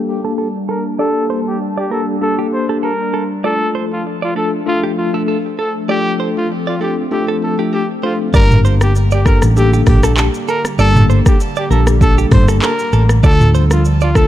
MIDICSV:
0, 0, Header, 1, 7, 480
1, 0, Start_track
1, 0, Key_signature, -2, "minor"
1, 0, Tempo, 612245
1, 776, Time_signature, 4, 2, 24, 8
1, 11192, End_track
2, 0, Start_track
2, 0, Title_t, "Clean electric guitar"
2, 0, Program_c, 0, 27
2, 193, Note_on_c, 0, 69, 69
2, 252, Note_off_c, 0, 69, 0
2, 299, Note_on_c, 0, 69, 81
2, 372, Note_off_c, 0, 69, 0
2, 540, Note_on_c, 0, 69, 72
2, 613, Note_off_c, 0, 69, 0
2, 779, Note_on_c, 0, 74, 90
2, 852, Note_off_c, 0, 74, 0
2, 1019, Note_on_c, 0, 72, 71
2, 1092, Note_off_c, 0, 72, 0
2, 1392, Note_on_c, 0, 74, 67
2, 1451, Note_off_c, 0, 74, 0
2, 1500, Note_on_c, 0, 70, 76
2, 1573, Note_off_c, 0, 70, 0
2, 1871, Note_on_c, 0, 67, 73
2, 1931, Note_off_c, 0, 67, 0
2, 2112, Note_on_c, 0, 69, 72
2, 2171, Note_off_c, 0, 69, 0
2, 2219, Note_on_c, 0, 69, 80
2, 2292, Note_off_c, 0, 69, 0
2, 2459, Note_on_c, 0, 69, 74
2, 2532, Note_off_c, 0, 69, 0
2, 2698, Note_on_c, 0, 74, 95
2, 2772, Note_off_c, 0, 74, 0
2, 2939, Note_on_c, 0, 72, 74
2, 3012, Note_off_c, 0, 72, 0
2, 3311, Note_on_c, 0, 74, 71
2, 3371, Note_off_c, 0, 74, 0
2, 3419, Note_on_c, 0, 69, 76
2, 3492, Note_off_c, 0, 69, 0
2, 3791, Note_on_c, 0, 67, 77
2, 3850, Note_off_c, 0, 67, 0
2, 4031, Note_on_c, 0, 69, 70
2, 4091, Note_off_c, 0, 69, 0
2, 4140, Note_on_c, 0, 69, 82
2, 4213, Note_off_c, 0, 69, 0
2, 4380, Note_on_c, 0, 69, 70
2, 4453, Note_off_c, 0, 69, 0
2, 4619, Note_on_c, 0, 74, 99
2, 4692, Note_off_c, 0, 74, 0
2, 4859, Note_on_c, 0, 72, 75
2, 4932, Note_off_c, 0, 72, 0
2, 5231, Note_on_c, 0, 74, 69
2, 5290, Note_off_c, 0, 74, 0
2, 5338, Note_on_c, 0, 69, 76
2, 5411, Note_off_c, 0, 69, 0
2, 5711, Note_on_c, 0, 69, 73
2, 5771, Note_off_c, 0, 69, 0
2, 5950, Note_on_c, 0, 67, 72
2, 6058, Note_off_c, 0, 67, 0
2, 6058, Note_on_c, 0, 69, 82
2, 6132, Note_off_c, 0, 69, 0
2, 6299, Note_on_c, 0, 72, 66
2, 6372, Note_off_c, 0, 72, 0
2, 6538, Note_on_c, 0, 74, 99
2, 6611, Note_off_c, 0, 74, 0
2, 6780, Note_on_c, 0, 72, 82
2, 6853, Note_off_c, 0, 72, 0
2, 7152, Note_on_c, 0, 74, 76
2, 7211, Note_off_c, 0, 74, 0
2, 7259, Note_on_c, 0, 70, 82
2, 7332, Note_off_c, 0, 70, 0
2, 7632, Note_on_c, 0, 67, 76
2, 7691, Note_off_c, 0, 67, 0
2, 7873, Note_on_c, 0, 69, 80
2, 7932, Note_off_c, 0, 69, 0
2, 7979, Note_on_c, 0, 69, 89
2, 8052, Note_off_c, 0, 69, 0
2, 8221, Note_on_c, 0, 69, 77
2, 8293, Note_off_c, 0, 69, 0
2, 8460, Note_on_c, 0, 74, 98
2, 8533, Note_off_c, 0, 74, 0
2, 8700, Note_on_c, 0, 72, 82
2, 8773, Note_off_c, 0, 72, 0
2, 9071, Note_on_c, 0, 74, 75
2, 9130, Note_off_c, 0, 74, 0
2, 9178, Note_on_c, 0, 70, 83
2, 9252, Note_off_c, 0, 70, 0
2, 9551, Note_on_c, 0, 67, 80
2, 9610, Note_off_c, 0, 67, 0
2, 9791, Note_on_c, 0, 69, 78
2, 9851, Note_off_c, 0, 69, 0
2, 9899, Note_on_c, 0, 69, 89
2, 9972, Note_off_c, 0, 69, 0
2, 10138, Note_on_c, 0, 69, 79
2, 10212, Note_off_c, 0, 69, 0
2, 10379, Note_on_c, 0, 74, 100
2, 10452, Note_off_c, 0, 74, 0
2, 10620, Note_on_c, 0, 72, 85
2, 10693, Note_off_c, 0, 72, 0
2, 10990, Note_on_c, 0, 74, 75
2, 11050, Note_off_c, 0, 74, 0
2, 11099, Note_on_c, 0, 69, 85
2, 11172, Note_off_c, 0, 69, 0
2, 11192, End_track
3, 0, Start_track
3, 0, Title_t, "Trumpet"
3, 0, Program_c, 1, 56
3, 69, Note_on_c, 1, 67, 69
3, 176, Note_off_c, 1, 67, 0
3, 548, Note_on_c, 1, 70, 76
3, 656, Note_off_c, 1, 70, 0
3, 785, Note_on_c, 1, 69, 99
3, 985, Note_off_c, 1, 69, 0
3, 1156, Note_on_c, 1, 67, 71
3, 1245, Note_off_c, 1, 67, 0
3, 1398, Note_on_c, 1, 67, 70
3, 1486, Note_off_c, 1, 67, 0
3, 1507, Note_on_c, 1, 69, 72
3, 1615, Note_off_c, 1, 69, 0
3, 1745, Note_on_c, 1, 69, 90
3, 1854, Note_off_c, 1, 69, 0
3, 1987, Note_on_c, 1, 72, 71
3, 2095, Note_off_c, 1, 72, 0
3, 2226, Note_on_c, 1, 70, 78
3, 2571, Note_off_c, 1, 70, 0
3, 2708, Note_on_c, 1, 69, 102
3, 2907, Note_off_c, 1, 69, 0
3, 3079, Note_on_c, 1, 65, 72
3, 3166, Note_off_c, 1, 65, 0
3, 3323, Note_on_c, 1, 65, 72
3, 3409, Note_off_c, 1, 65, 0
3, 3426, Note_on_c, 1, 69, 75
3, 3534, Note_off_c, 1, 69, 0
3, 3669, Note_on_c, 1, 65, 91
3, 3776, Note_off_c, 1, 65, 0
3, 3905, Note_on_c, 1, 65, 68
3, 4014, Note_off_c, 1, 65, 0
3, 4388, Note_on_c, 1, 69, 77
3, 4495, Note_off_c, 1, 69, 0
3, 4627, Note_on_c, 1, 67, 100
3, 4826, Note_off_c, 1, 67, 0
3, 4999, Note_on_c, 1, 65, 71
3, 5086, Note_off_c, 1, 65, 0
3, 5239, Note_on_c, 1, 65, 68
3, 5326, Note_off_c, 1, 65, 0
3, 5350, Note_on_c, 1, 67, 69
3, 5456, Note_off_c, 1, 67, 0
3, 5585, Note_on_c, 1, 67, 80
3, 5694, Note_off_c, 1, 67, 0
3, 5826, Note_on_c, 1, 69, 69
3, 5934, Note_off_c, 1, 69, 0
3, 6064, Note_on_c, 1, 67, 78
3, 6173, Note_off_c, 1, 67, 0
3, 6305, Note_on_c, 1, 65, 76
3, 6414, Note_off_c, 1, 65, 0
3, 6547, Note_on_c, 1, 70, 108
3, 6747, Note_off_c, 1, 70, 0
3, 6922, Note_on_c, 1, 67, 80
3, 7008, Note_off_c, 1, 67, 0
3, 7162, Note_on_c, 1, 67, 73
3, 7248, Note_off_c, 1, 67, 0
3, 7272, Note_on_c, 1, 70, 82
3, 7378, Note_off_c, 1, 70, 0
3, 7509, Note_on_c, 1, 67, 89
3, 7616, Note_off_c, 1, 67, 0
3, 7749, Note_on_c, 1, 67, 74
3, 7856, Note_off_c, 1, 67, 0
3, 8227, Note_on_c, 1, 70, 86
3, 8335, Note_off_c, 1, 70, 0
3, 8466, Note_on_c, 1, 69, 110
3, 8666, Note_off_c, 1, 69, 0
3, 8840, Note_on_c, 1, 67, 75
3, 8927, Note_off_c, 1, 67, 0
3, 9078, Note_on_c, 1, 67, 77
3, 9166, Note_off_c, 1, 67, 0
3, 9187, Note_on_c, 1, 69, 80
3, 9294, Note_off_c, 1, 69, 0
3, 9425, Note_on_c, 1, 69, 96
3, 9533, Note_off_c, 1, 69, 0
3, 9666, Note_on_c, 1, 72, 80
3, 9774, Note_off_c, 1, 72, 0
3, 9903, Note_on_c, 1, 70, 90
3, 10250, Note_off_c, 1, 70, 0
3, 10386, Note_on_c, 1, 69, 114
3, 10586, Note_off_c, 1, 69, 0
3, 10757, Note_on_c, 1, 65, 80
3, 10845, Note_off_c, 1, 65, 0
3, 10996, Note_on_c, 1, 65, 77
3, 11085, Note_off_c, 1, 65, 0
3, 11105, Note_on_c, 1, 69, 84
3, 11192, Note_off_c, 1, 69, 0
3, 11192, End_track
4, 0, Start_track
4, 0, Title_t, "Tine electric piano"
4, 0, Program_c, 2, 4
4, 0, Note_on_c, 2, 58, 87
4, 0, Note_on_c, 2, 62, 84
4, 0, Note_on_c, 2, 67, 80
4, 0, Note_on_c, 2, 69, 94
4, 155, Note_off_c, 2, 58, 0
4, 155, Note_off_c, 2, 62, 0
4, 156, Note_off_c, 2, 67, 0
4, 157, Note_off_c, 2, 69, 0
4, 185, Note_on_c, 2, 58, 73
4, 186, Note_on_c, 2, 62, 65
4, 188, Note_on_c, 2, 67, 65
4, 189, Note_on_c, 2, 69, 76
4, 361, Note_off_c, 2, 58, 0
4, 361, Note_off_c, 2, 62, 0
4, 362, Note_off_c, 2, 67, 0
4, 363, Note_off_c, 2, 69, 0
4, 774, Note_on_c, 2, 58, 82
4, 775, Note_on_c, 2, 62, 79
4, 776, Note_on_c, 2, 67, 73
4, 778, Note_on_c, 2, 69, 95
4, 1220, Note_off_c, 2, 58, 0
4, 1221, Note_off_c, 2, 62, 0
4, 1222, Note_off_c, 2, 67, 0
4, 1222, Note_off_c, 2, 69, 0
4, 1494, Note_on_c, 2, 58, 69
4, 1496, Note_on_c, 2, 62, 65
4, 1499, Note_on_c, 2, 67, 66
4, 1500, Note_on_c, 2, 69, 82
4, 1681, Note_off_c, 2, 58, 0
4, 1682, Note_off_c, 2, 62, 0
4, 1684, Note_off_c, 2, 67, 0
4, 1685, Note_off_c, 2, 69, 0
4, 1734, Note_on_c, 2, 58, 87
4, 1736, Note_on_c, 2, 62, 82
4, 1737, Note_on_c, 2, 67, 84
4, 1739, Note_on_c, 2, 69, 95
4, 2076, Note_off_c, 2, 58, 0
4, 2076, Note_off_c, 2, 62, 0
4, 2077, Note_off_c, 2, 67, 0
4, 2078, Note_off_c, 2, 69, 0
4, 2105, Note_on_c, 2, 58, 71
4, 2107, Note_on_c, 2, 62, 67
4, 2109, Note_on_c, 2, 67, 69
4, 2110, Note_on_c, 2, 69, 79
4, 2281, Note_off_c, 2, 58, 0
4, 2282, Note_off_c, 2, 62, 0
4, 2283, Note_off_c, 2, 67, 0
4, 2283, Note_off_c, 2, 69, 0
4, 2694, Note_on_c, 2, 57, 83
4, 2695, Note_on_c, 2, 62, 75
4, 2697, Note_on_c, 2, 65, 78
4, 2698, Note_on_c, 2, 69, 92
4, 3141, Note_off_c, 2, 57, 0
4, 3141, Note_off_c, 2, 62, 0
4, 3142, Note_off_c, 2, 65, 0
4, 3143, Note_off_c, 2, 69, 0
4, 3414, Note_on_c, 2, 57, 71
4, 3416, Note_on_c, 2, 62, 64
4, 3417, Note_on_c, 2, 65, 66
4, 3419, Note_on_c, 2, 69, 78
4, 3601, Note_off_c, 2, 57, 0
4, 3602, Note_off_c, 2, 62, 0
4, 3603, Note_off_c, 2, 65, 0
4, 3603, Note_off_c, 2, 69, 0
4, 3653, Note_on_c, 2, 57, 91
4, 3654, Note_on_c, 2, 62, 82
4, 3656, Note_on_c, 2, 65, 80
4, 3657, Note_on_c, 2, 69, 95
4, 3995, Note_off_c, 2, 57, 0
4, 3995, Note_off_c, 2, 62, 0
4, 3997, Note_off_c, 2, 65, 0
4, 3997, Note_off_c, 2, 69, 0
4, 4025, Note_on_c, 2, 57, 75
4, 4027, Note_on_c, 2, 62, 67
4, 4029, Note_on_c, 2, 65, 69
4, 4031, Note_on_c, 2, 69, 83
4, 4201, Note_off_c, 2, 57, 0
4, 4202, Note_off_c, 2, 62, 0
4, 4203, Note_off_c, 2, 65, 0
4, 4203, Note_off_c, 2, 69, 0
4, 4614, Note_on_c, 2, 57, 82
4, 4615, Note_on_c, 2, 62, 75
4, 4617, Note_on_c, 2, 65, 75
4, 4619, Note_on_c, 2, 69, 94
4, 5061, Note_off_c, 2, 57, 0
4, 5061, Note_off_c, 2, 62, 0
4, 5062, Note_off_c, 2, 65, 0
4, 5063, Note_off_c, 2, 69, 0
4, 5335, Note_on_c, 2, 57, 67
4, 5337, Note_on_c, 2, 62, 64
4, 5339, Note_on_c, 2, 65, 64
4, 5339, Note_on_c, 2, 69, 76
4, 5522, Note_off_c, 2, 57, 0
4, 5523, Note_off_c, 2, 62, 0
4, 5524, Note_off_c, 2, 65, 0
4, 5524, Note_off_c, 2, 69, 0
4, 5575, Note_on_c, 2, 57, 86
4, 5576, Note_on_c, 2, 62, 80
4, 5577, Note_on_c, 2, 65, 82
4, 5580, Note_on_c, 2, 69, 102
4, 5916, Note_off_c, 2, 57, 0
4, 5917, Note_off_c, 2, 62, 0
4, 5917, Note_off_c, 2, 65, 0
4, 5919, Note_off_c, 2, 69, 0
4, 5948, Note_on_c, 2, 57, 72
4, 5949, Note_on_c, 2, 62, 66
4, 5951, Note_on_c, 2, 65, 66
4, 5952, Note_on_c, 2, 69, 81
4, 6122, Note_off_c, 2, 57, 0
4, 6123, Note_off_c, 2, 62, 0
4, 6124, Note_off_c, 2, 65, 0
4, 6124, Note_off_c, 2, 69, 0
4, 6296, Note_on_c, 2, 57, 69
4, 6297, Note_on_c, 2, 62, 66
4, 6298, Note_on_c, 2, 65, 61
4, 6300, Note_on_c, 2, 69, 76
4, 6482, Note_off_c, 2, 57, 0
4, 6483, Note_off_c, 2, 62, 0
4, 6483, Note_off_c, 2, 65, 0
4, 6484, Note_off_c, 2, 69, 0
4, 6536, Note_on_c, 2, 58, 89
4, 6537, Note_on_c, 2, 62, 79
4, 6539, Note_on_c, 2, 67, 81
4, 6540, Note_on_c, 2, 70, 92
4, 6982, Note_off_c, 2, 58, 0
4, 6982, Note_off_c, 2, 62, 0
4, 6983, Note_off_c, 2, 67, 0
4, 6984, Note_off_c, 2, 70, 0
4, 7257, Note_on_c, 2, 58, 73
4, 7258, Note_on_c, 2, 62, 70
4, 7260, Note_on_c, 2, 67, 68
4, 7261, Note_on_c, 2, 69, 83
4, 7443, Note_off_c, 2, 58, 0
4, 7444, Note_off_c, 2, 62, 0
4, 7444, Note_off_c, 2, 67, 0
4, 7445, Note_off_c, 2, 69, 0
4, 7497, Note_on_c, 2, 58, 93
4, 7498, Note_on_c, 2, 62, 87
4, 7501, Note_on_c, 2, 67, 92
4, 7502, Note_on_c, 2, 69, 105
4, 7837, Note_off_c, 2, 58, 0
4, 7838, Note_off_c, 2, 62, 0
4, 7839, Note_off_c, 2, 67, 0
4, 7840, Note_off_c, 2, 69, 0
4, 7869, Note_on_c, 2, 58, 75
4, 7871, Note_on_c, 2, 62, 76
4, 7872, Note_on_c, 2, 67, 70
4, 7874, Note_on_c, 2, 69, 84
4, 8043, Note_off_c, 2, 58, 0
4, 8044, Note_off_c, 2, 62, 0
4, 8044, Note_off_c, 2, 67, 0
4, 8045, Note_off_c, 2, 69, 0
4, 8456, Note_on_c, 2, 58, 84
4, 8457, Note_on_c, 2, 62, 77
4, 8459, Note_on_c, 2, 67, 82
4, 8460, Note_on_c, 2, 69, 100
4, 8902, Note_off_c, 2, 58, 0
4, 8902, Note_off_c, 2, 62, 0
4, 8903, Note_off_c, 2, 67, 0
4, 8904, Note_off_c, 2, 69, 0
4, 9175, Note_on_c, 2, 58, 78
4, 9177, Note_on_c, 2, 62, 74
4, 9178, Note_on_c, 2, 67, 67
4, 9180, Note_on_c, 2, 69, 88
4, 9362, Note_off_c, 2, 58, 0
4, 9363, Note_off_c, 2, 62, 0
4, 9363, Note_off_c, 2, 67, 0
4, 9364, Note_off_c, 2, 69, 0
4, 9415, Note_on_c, 2, 58, 93
4, 9416, Note_on_c, 2, 62, 92
4, 9418, Note_on_c, 2, 67, 85
4, 9420, Note_on_c, 2, 69, 104
4, 9756, Note_off_c, 2, 58, 0
4, 9757, Note_off_c, 2, 62, 0
4, 9758, Note_off_c, 2, 67, 0
4, 9759, Note_off_c, 2, 69, 0
4, 9785, Note_on_c, 2, 58, 80
4, 9788, Note_on_c, 2, 62, 71
4, 9788, Note_on_c, 2, 67, 75
4, 9790, Note_on_c, 2, 69, 88
4, 9961, Note_off_c, 2, 58, 0
4, 9962, Note_off_c, 2, 62, 0
4, 9963, Note_off_c, 2, 67, 0
4, 9963, Note_off_c, 2, 69, 0
4, 10373, Note_on_c, 2, 57, 91
4, 10376, Note_on_c, 2, 62, 86
4, 10377, Note_on_c, 2, 65, 82
4, 10378, Note_on_c, 2, 69, 94
4, 10820, Note_off_c, 2, 57, 0
4, 10821, Note_off_c, 2, 62, 0
4, 10822, Note_off_c, 2, 65, 0
4, 10823, Note_off_c, 2, 69, 0
4, 11094, Note_on_c, 2, 57, 78
4, 11094, Note_on_c, 2, 62, 68
4, 11096, Note_on_c, 2, 65, 68
4, 11098, Note_on_c, 2, 69, 81
4, 11192, Note_off_c, 2, 57, 0
4, 11192, Note_off_c, 2, 62, 0
4, 11192, Note_off_c, 2, 65, 0
4, 11192, Note_off_c, 2, 69, 0
4, 11192, End_track
5, 0, Start_track
5, 0, Title_t, "Analog synth pad"
5, 0, Program_c, 3, 89
5, 0, Note_on_c, 3, 55, 77
5, 0, Note_on_c, 3, 58, 73
5, 0, Note_on_c, 3, 62, 75
5, 0, Note_on_c, 3, 81, 88
5, 2665, Note_off_c, 3, 55, 0
5, 2666, Note_off_c, 3, 58, 0
5, 2666, Note_off_c, 3, 81, 0
5, 2696, Note_on_c, 3, 53, 80
5, 2697, Note_on_c, 3, 57, 73
5, 2697, Note_on_c, 3, 69, 90
5, 4585, Note_off_c, 3, 62, 0
5, 4614, Note_on_c, 3, 60, 74
5, 6505, Note_off_c, 3, 53, 0
5, 6505, Note_off_c, 3, 57, 0
5, 6505, Note_off_c, 3, 69, 0
5, 6516, Note_off_c, 3, 60, 0
5, 6538, Note_on_c, 3, 67, 91
5, 6539, Note_on_c, 3, 50, 81
5, 6539, Note_on_c, 3, 55, 80
5, 6539, Note_on_c, 3, 58, 74
5, 10346, Note_off_c, 3, 67, 0
5, 10347, Note_off_c, 3, 58, 0
5, 10375, Note_on_c, 3, 53, 74
5, 10376, Note_on_c, 3, 65, 91
5, 11192, Note_off_c, 3, 50, 0
5, 11192, Note_off_c, 3, 53, 0
5, 11192, Note_off_c, 3, 55, 0
5, 11192, Note_off_c, 3, 65, 0
5, 11192, End_track
6, 0, Start_track
6, 0, Title_t, "Fingered electric bass"
6, 0, Program_c, 4, 33
6, 6537, Note_on_c, 4, 31, 110
6, 7358, Note_off_c, 4, 31, 0
6, 7390, Note_on_c, 4, 33, 90
6, 7691, Note_off_c, 4, 33, 0
6, 7736, Note_on_c, 4, 34, 83
6, 8059, Note_off_c, 4, 34, 0
6, 8456, Note_on_c, 4, 31, 113
6, 8779, Note_off_c, 4, 31, 0
6, 9175, Note_on_c, 4, 34, 98
6, 9592, Note_off_c, 4, 34, 0
6, 9655, Note_on_c, 4, 31, 93
6, 9864, Note_off_c, 4, 31, 0
6, 10135, Note_on_c, 4, 33, 92
6, 10344, Note_off_c, 4, 33, 0
6, 10376, Note_on_c, 4, 38, 103
6, 11192, Note_off_c, 4, 38, 0
6, 11192, End_track
7, 0, Start_track
7, 0, Title_t, "Drums"
7, 6537, Note_on_c, 9, 36, 120
7, 6538, Note_on_c, 9, 82, 74
7, 6615, Note_off_c, 9, 36, 0
7, 6616, Note_off_c, 9, 82, 0
7, 6671, Note_on_c, 9, 45, 101
7, 6673, Note_on_c, 9, 82, 53
7, 6750, Note_off_c, 9, 45, 0
7, 6751, Note_off_c, 9, 82, 0
7, 6782, Note_on_c, 9, 82, 63
7, 6860, Note_off_c, 9, 82, 0
7, 6907, Note_on_c, 9, 82, 84
7, 6908, Note_on_c, 9, 37, 96
7, 6986, Note_off_c, 9, 37, 0
7, 6986, Note_off_c, 9, 82, 0
7, 7021, Note_on_c, 9, 82, 80
7, 7099, Note_off_c, 9, 82, 0
7, 7143, Note_on_c, 9, 82, 57
7, 7221, Note_off_c, 9, 82, 0
7, 7257, Note_on_c, 9, 37, 90
7, 7258, Note_on_c, 9, 36, 87
7, 7263, Note_on_c, 9, 82, 57
7, 7335, Note_off_c, 9, 37, 0
7, 7337, Note_off_c, 9, 36, 0
7, 7342, Note_off_c, 9, 82, 0
7, 7386, Note_on_c, 9, 37, 94
7, 7386, Note_on_c, 9, 82, 93
7, 7464, Note_off_c, 9, 37, 0
7, 7465, Note_off_c, 9, 82, 0
7, 7500, Note_on_c, 9, 82, 71
7, 7579, Note_off_c, 9, 82, 0
7, 7632, Note_on_c, 9, 82, 55
7, 7710, Note_off_c, 9, 82, 0
7, 7732, Note_on_c, 9, 45, 86
7, 7734, Note_on_c, 9, 46, 53
7, 7734, Note_on_c, 9, 82, 54
7, 7736, Note_on_c, 9, 36, 100
7, 7736, Note_on_c, 9, 37, 83
7, 7811, Note_off_c, 9, 45, 0
7, 7813, Note_off_c, 9, 46, 0
7, 7813, Note_off_c, 9, 82, 0
7, 7814, Note_off_c, 9, 36, 0
7, 7814, Note_off_c, 9, 37, 0
7, 7866, Note_on_c, 9, 37, 101
7, 7866, Note_on_c, 9, 82, 109
7, 7944, Note_off_c, 9, 82, 0
7, 7945, Note_off_c, 9, 37, 0
7, 7975, Note_on_c, 9, 39, 100
7, 7978, Note_on_c, 9, 82, 84
7, 8053, Note_off_c, 9, 39, 0
7, 8057, Note_off_c, 9, 82, 0
7, 8109, Note_on_c, 9, 82, 57
7, 8187, Note_off_c, 9, 82, 0
7, 8216, Note_on_c, 9, 82, 49
7, 8295, Note_off_c, 9, 82, 0
7, 8348, Note_on_c, 9, 37, 95
7, 8351, Note_on_c, 9, 82, 83
7, 8426, Note_off_c, 9, 37, 0
7, 8429, Note_off_c, 9, 82, 0
7, 8458, Note_on_c, 9, 82, 77
7, 8536, Note_off_c, 9, 82, 0
7, 8592, Note_on_c, 9, 45, 101
7, 8593, Note_on_c, 9, 82, 57
7, 8670, Note_off_c, 9, 45, 0
7, 8672, Note_off_c, 9, 82, 0
7, 8703, Note_on_c, 9, 82, 63
7, 8782, Note_off_c, 9, 82, 0
7, 8828, Note_on_c, 9, 36, 111
7, 8828, Note_on_c, 9, 37, 94
7, 8828, Note_on_c, 9, 82, 87
7, 8906, Note_off_c, 9, 37, 0
7, 8906, Note_off_c, 9, 82, 0
7, 8907, Note_off_c, 9, 36, 0
7, 8940, Note_on_c, 9, 82, 81
7, 9018, Note_off_c, 9, 82, 0
7, 9062, Note_on_c, 9, 82, 58
7, 9141, Note_off_c, 9, 82, 0
7, 9183, Note_on_c, 9, 82, 57
7, 9261, Note_off_c, 9, 82, 0
7, 9305, Note_on_c, 9, 37, 98
7, 9306, Note_on_c, 9, 82, 99
7, 9384, Note_off_c, 9, 37, 0
7, 9384, Note_off_c, 9, 82, 0
7, 9416, Note_on_c, 9, 36, 98
7, 9420, Note_on_c, 9, 82, 70
7, 9494, Note_off_c, 9, 36, 0
7, 9498, Note_off_c, 9, 82, 0
7, 9551, Note_on_c, 9, 82, 59
7, 9630, Note_off_c, 9, 82, 0
7, 9653, Note_on_c, 9, 45, 88
7, 9655, Note_on_c, 9, 36, 104
7, 9655, Note_on_c, 9, 46, 54
7, 9655, Note_on_c, 9, 82, 54
7, 9656, Note_on_c, 9, 37, 86
7, 9731, Note_off_c, 9, 45, 0
7, 9733, Note_off_c, 9, 46, 0
7, 9733, Note_off_c, 9, 82, 0
7, 9734, Note_off_c, 9, 36, 0
7, 9734, Note_off_c, 9, 37, 0
7, 9787, Note_on_c, 9, 37, 102
7, 9787, Note_on_c, 9, 82, 108
7, 9866, Note_off_c, 9, 37, 0
7, 9866, Note_off_c, 9, 82, 0
7, 9894, Note_on_c, 9, 39, 100
7, 9898, Note_on_c, 9, 82, 81
7, 9973, Note_off_c, 9, 39, 0
7, 9976, Note_off_c, 9, 82, 0
7, 10028, Note_on_c, 9, 82, 56
7, 10106, Note_off_c, 9, 82, 0
7, 10134, Note_on_c, 9, 82, 50
7, 10213, Note_off_c, 9, 82, 0
7, 10265, Note_on_c, 9, 37, 99
7, 10268, Note_on_c, 9, 82, 82
7, 10343, Note_off_c, 9, 37, 0
7, 10346, Note_off_c, 9, 82, 0
7, 10376, Note_on_c, 9, 36, 117
7, 10376, Note_on_c, 9, 82, 77
7, 10454, Note_off_c, 9, 36, 0
7, 10454, Note_off_c, 9, 82, 0
7, 10510, Note_on_c, 9, 45, 100
7, 10512, Note_on_c, 9, 82, 55
7, 10589, Note_off_c, 9, 45, 0
7, 10590, Note_off_c, 9, 82, 0
7, 10621, Note_on_c, 9, 82, 67
7, 10699, Note_off_c, 9, 82, 0
7, 10747, Note_on_c, 9, 37, 96
7, 10747, Note_on_c, 9, 82, 88
7, 10825, Note_off_c, 9, 37, 0
7, 10825, Note_off_c, 9, 82, 0
7, 10858, Note_on_c, 9, 82, 82
7, 10937, Note_off_c, 9, 82, 0
7, 10982, Note_on_c, 9, 82, 62
7, 11060, Note_off_c, 9, 82, 0
7, 11096, Note_on_c, 9, 37, 97
7, 11097, Note_on_c, 9, 36, 86
7, 11102, Note_on_c, 9, 82, 59
7, 11174, Note_off_c, 9, 37, 0
7, 11176, Note_off_c, 9, 36, 0
7, 11180, Note_off_c, 9, 82, 0
7, 11192, End_track
0, 0, End_of_file